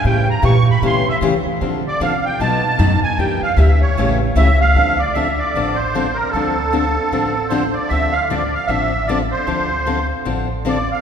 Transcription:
X:1
M:4/4
L:1/8
Q:"Swing" 1/4=153
K:Dm
V:1 name="Accordion"
g b ^c' =b ^b e z2 | z d f g a3 ^g | g f e ^c2 z e f- | f d e d2 c2 B |
A6 c d | e f d f e2 d c- | c3 z3 d f |]
V:2 name="Steel-string acoustic guitar"
[^C,E,A,^CG] z [C,E,A,CG] z [C,E,A,CG] z [C,E,A,CG] z | [D,F,CDA] z [D,F,CDA] z [=B,,^F,A,^D^F] z [B,,F,A,DF] z | [E,B,DG] z [E,B,DG] z [^C,E,A,^CG] z [C,E,A,CG] z | [D,F,CDA] z [D,F,CDA] z [D,F,CDA] z [D,F,CDA] z |
[D,F,CDA] z [D,F,CDA] z [D,F,CDA] z [D,F,CDA] z | [D,F,CDA] z [D,F,CDA] z [D,F,CDA] z [D,F,CDA] z | [D,F,CDA] z [D,F,CDA] z [D,F,CDA] z [D,F,CDA] z |]
V:3 name="Upright bass" clef=bass
A,,2 B,,2 ^B,,2 E, z | D,2 C,2 =B,,2 ^F,, z | E,, z D,,2 A,,,2 ^C,,2 | D,,4 A,,,4 |
D,,4 A,,,4 | D,,4 A,,,4 | D,,4 A,,,4 |]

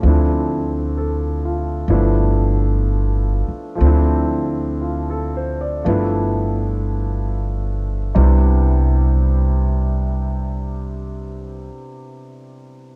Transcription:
X:1
M:4/4
L:1/16
Q:"Swing" 1/4=56
K:C
V:1 name="Grand piano"
z4 A2 F3 z6 z | z4 F A c d z8 | z16 |]
V:2 name="Grand piano"
[F,A,CDE]8 [F,A,B,DE]8 | [F,A,CDE]8 [F,A,B,DE]8 | [C,G,B,DE]16 |]
V:3 name="Upright bass" clef=bass
D,,8 G,,,6 z2 | D,,8 G,,,8 | C,,16 |]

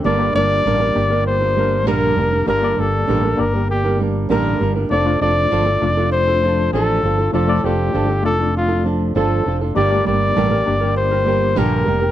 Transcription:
X:1
M:4/4
L:1/16
Q:1/4=99
K:Gm
V:1 name="Flugelhorn"
d2 d6 c4 B4 | B2 A4 B2 G2 z2 B3 z | d2 d6 c4 A4 | A2 G4 A2 F2 z2 A3 z |
d2 d6 c4 B4 |]
V:2 name="Nylon-string guitar"
[G,,D,G,B,DB]2 [G,B,DB]2 [G,,D,G,B,DB] [G,B,DB]2 [G,B,DB]2 [G,B,DB] [G,B,DB]2 [G,,D,G,B,DB]2 [G,B,DB] [G,B,DB] | [G,,D,G,B,DB]2 [G,B,D]2 [G,,D,G,B,DB] [G,B,DB]2 [G,B,DB]2 [G,B,DB] [G,B,DB]2 [G,,D,G,B,DB]2 [G,B,DB] [G,B,DB] | [F,DFA]2 [F,DFA]2 [F,DFA] [DFA]2 [DFA]2 [DFA] [F,DFA]2 [F,DFA]2 [F,DFA] [DFA] | [F,DFA]2 [F,DFA]2 [F,DFA] [DFA]2 [DFA]2 [DFA] [F,DFA]2 [F,DFA]2 [F,DFA] [DFA] |
[G,,D,G,B,GB]2 [G,B,GB]2 [G,,D,G,B,GB] [G,B,GB]2 [G,B,GB]2 [G,B,GB] [G,B,GB]2 [G,,D,G,B,GB]2 [G,B,GB] [G,B,GB] |]
V:3 name="Reed electric piano"
[B,DGd] [B,DGd]4- [B,DGd] [B,DGd]6- [B,DGd] z3 | [B,DGd] [B,DGd]4- [B,DGd] [B,DGd]6- [B,DGd] z3 | [A,DFd] [A,DFd]4- [A,DFd] [A,DFd]6- [A,DFd] z3 | [A,DFd] [A,DFd]4- [A,DFd] [A,DFd]6- [A,DFd] z3 |
[B,DGd] [A,B,DGd]4- [A,B,DGd] [B,DGd]6- [B,DGd] z3 |]
V:4 name="Fretless electric bass" clef=bass
G,,,2 G,,,2 A,,,2 G,,,6 B,,,2 F,,,2 | G,,,2 G,,,2 A,,,2 G,,,6 A,,,2 G,,,2 | F,,,2 F,,,2 G,,,2 F,,,6 A,,,2 G,,,2 | F,,,2 F,,,2 G,,,2 F,,,6 G,,,2 F,,,2 |
G,,,2 G,,,2 A,,,2 G,,,6 B,,,2 F,,,2 |]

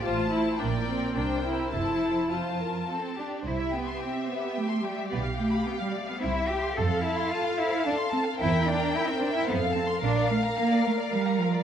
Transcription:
X:1
M:3/4
L:1/16
Q:1/4=109
K:F
V:1 name="Violin section"
a4 g4 g4 | a4 a6 z2 | [K:C] e12 | f8 e4 |
f12 | g8 f4- | [K:Bblyd] f12 |]
V:2 name="Violin section"
c4 [Bd]4 [Bc]4 | [Ac]4 c2 B2 A2 G2 | [K:C] c e g c' g e c e g c' g e | d f g b g f d f c e g c' |
c f a c' a f c f a c' a f | c e g _b g e c e c f a c' | [K:Bblyd] B d f b f d B d f b f d |]
V:3 name="Viola section"
F2 E2 D2 C2 D2 E2 | E4 F4 z4 | [K:C] G12- | G12 |
A12 | _B8 A4 | [K:Bblyd] B12 |]
V:4 name="Cello section"
A,,4 B,,4 C,4 | F,,8 C2 D2 | [K:C] E2 B,2 C2 B,2 A,2 G,2 | B,2 A,2 B, G, A, B, E2 G2 |
A2 E2 F2 E2 D2 C2 | E2 D2 E C D E B,2 C2 | [K:Bblyd] D2 A,2 B,2 A,2 G,2 F,2 |]
V:5 name="Double bass section" clef=bass
A,,,4 B,,,4 C,,4 | F,,,4 z8 | [K:C] C,,4 z8 | B,,,4 z4 C,,4 |
F,,4 z8 | E,,4 z4 F,,4 | [K:Bblyd] B,,,4 z8 |]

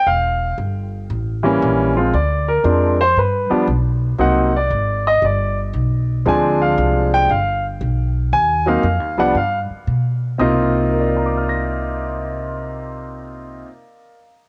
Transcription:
X:1
M:4/4
L:1/8
Q:"Swing" 1/4=116
K:Cm
V:1 name="Grand piano"
f2 z6 | d B2 c =B z3 | _g d2 e d z3 | a f2 g f z3 |
a f2 ^f =f z3 | z2 [Bdfbd'f'b']6- | [Bdfbd'f'b']8 |]
V:2 name="Grand piano"
z4 z [=E,G,B,^C]2 [F,A,=CF] | z2 [F,A,CD] z2 [F,G,=B,D] z2 | [_G,B,CE] z6 z | [F,A,CD]4 z4 |
z [^F,B,CE] z [=F,G,=B,D] z4 | [C,B,CEFe]8- | [C,B,CEFe]8 |]
V:3 name="Upright bass" clef=bass
=E,,,2 G,,,2 =A,,,2 B,,,2 | D,,2 F,,2 G,, z =B,,,2 | C,,2 A,,,2 G,,,2 =B,,,2 | D,,2 C,,2 G,,,2 =B,,,2 |
E,,2 (3F,, E,, C,, G,, z =B,,2 | C,,8- | C,,8 |]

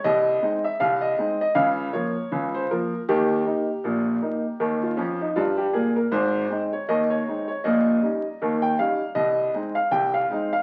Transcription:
X:1
M:2/4
L:1/16
Q:"Swing 16ths" 1/4=79
K:Ab
V:1 name="Grand piano"
e3 _f =f e2 e | f2 d3 c B2 | G8- | G F D E F G A B |
c3 d e d2 d | e4- e g f2 | e3 f g f2 f |]
V:2 name="Grand piano" clef=bass
[C,,C,]2 [A,CE]2 [C,,C,]2 [A,CE]2 | [D,,D,]2 [F,B,F]2 [D,,D,]2 [F,B,F]2 | [E,,E,]2 [B,E]2 [B,,,B,,]2 [B,E]2 | [E,,E,]2 [F,,F,]2 [G,,G,]2 [B,,B,]2 |
[A,,,A,,]2 [A,CE]2 [E,,E,]2 [A,CE]2 | [B,,,B,,]2 [G,DE]2 [E,,E,]2 [G,DE]2 | [C,,C,]2 [A,CE]2 [C,,C,]2 [A,CE]2 |]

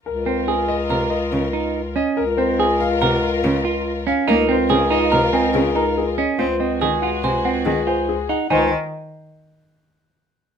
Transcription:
X:1
M:5/4
L:1/8
Q:1/4=142
K:Db
V:1 name="Celesta"
z8 z2 | z8 z2 | z4 b a z b z2 | z4 a g z a z2 |
a z8 z |]
V:2 name="Grand piano"
B c A e f e z3 e | B c A f g f z3 f | B c A e f e A B A e | c e A g a g A c A g |
c z8 z |]
V:3 name="String section"
[FB]8- [FB] z | [FB]8- [FB] z | [FB]8- [FB] z | [GA]8- [GA] z |
z8 z2 |]
V:4 name="Clean electric guitar"
z C A z B z2 E z D | z C A z B z2 F z D | E C A E B C z E z D | F C A F c C z F z E |
E z8 z |]
V:5 name="Cello" clef=bass
z4 C, z D, z3 | z4 C, z D, z3 | B, z D, z C, z D, z3 | C z E, z C, z E, z3 |
E, z8 z |]
V:6 name="Bass clarinet" clef=bass
D,,8- D,,2 | D,,8- D,,2 | D,,8- D,,2 | D,,8- D,,2 |
D,, z8 z |]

